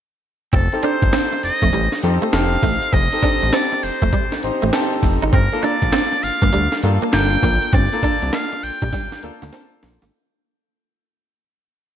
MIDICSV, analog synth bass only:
0, 0, Header, 1, 2, 480
1, 0, Start_track
1, 0, Key_signature, -2, "minor"
1, 0, Tempo, 600000
1, 424, Time_signature, 4, 2, 24, 8
1, 9563, End_track
2, 0, Start_track
2, 0, Title_t, "Analog synth bass"
2, 0, Program_c, 0, 38
2, 426, Note_on_c, 0, 29, 110
2, 549, Note_off_c, 0, 29, 0
2, 821, Note_on_c, 0, 31, 86
2, 888, Note_off_c, 0, 31, 0
2, 1148, Note_on_c, 0, 29, 47
2, 1209, Note_off_c, 0, 29, 0
2, 1299, Note_on_c, 0, 29, 89
2, 1367, Note_off_c, 0, 29, 0
2, 1387, Note_on_c, 0, 33, 108
2, 1510, Note_off_c, 0, 33, 0
2, 1628, Note_on_c, 0, 41, 108
2, 1751, Note_off_c, 0, 41, 0
2, 1866, Note_on_c, 0, 29, 103
2, 2058, Note_off_c, 0, 29, 0
2, 2103, Note_on_c, 0, 33, 92
2, 2228, Note_off_c, 0, 33, 0
2, 2345, Note_on_c, 0, 29, 111
2, 2469, Note_off_c, 0, 29, 0
2, 2744, Note_on_c, 0, 33, 88
2, 2810, Note_off_c, 0, 33, 0
2, 3069, Note_on_c, 0, 29, 50
2, 3130, Note_off_c, 0, 29, 0
2, 3219, Note_on_c, 0, 29, 87
2, 3287, Note_off_c, 0, 29, 0
2, 3550, Note_on_c, 0, 33, 53
2, 3610, Note_off_c, 0, 33, 0
2, 3706, Note_on_c, 0, 33, 86
2, 3771, Note_off_c, 0, 33, 0
2, 4025, Note_on_c, 0, 29, 101
2, 4149, Note_off_c, 0, 29, 0
2, 4184, Note_on_c, 0, 32, 98
2, 4250, Note_off_c, 0, 32, 0
2, 4265, Note_on_c, 0, 31, 108
2, 4389, Note_off_c, 0, 31, 0
2, 4660, Note_on_c, 0, 34, 92
2, 4727, Note_off_c, 0, 34, 0
2, 4988, Note_on_c, 0, 31, 49
2, 5049, Note_off_c, 0, 31, 0
2, 5139, Note_on_c, 0, 31, 106
2, 5207, Note_off_c, 0, 31, 0
2, 5230, Note_on_c, 0, 38, 101
2, 5352, Note_off_c, 0, 38, 0
2, 5467, Note_on_c, 0, 43, 107
2, 5590, Note_off_c, 0, 43, 0
2, 5709, Note_on_c, 0, 31, 98
2, 5899, Note_off_c, 0, 31, 0
2, 5945, Note_on_c, 0, 34, 102
2, 6069, Note_off_c, 0, 34, 0
2, 6186, Note_on_c, 0, 31, 107
2, 6310, Note_off_c, 0, 31, 0
2, 6580, Note_on_c, 0, 36, 82
2, 6648, Note_off_c, 0, 36, 0
2, 6907, Note_on_c, 0, 34, 50
2, 6968, Note_off_c, 0, 34, 0
2, 7058, Note_on_c, 0, 34, 93
2, 7127, Note_off_c, 0, 34, 0
2, 7387, Note_on_c, 0, 38, 52
2, 7448, Note_off_c, 0, 38, 0
2, 7542, Note_on_c, 0, 38, 89
2, 7609, Note_off_c, 0, 38, 0
2, 7868, Note_on_c, 0, 34, 97
2, 7990, Note_off_c, 0, 34, 0
2, 8022, Note_on_c, 0, 32, 91
2, 8089, Note_off_c, 0, 32, 0
2, 9563, End_track
0, 0, End_of_file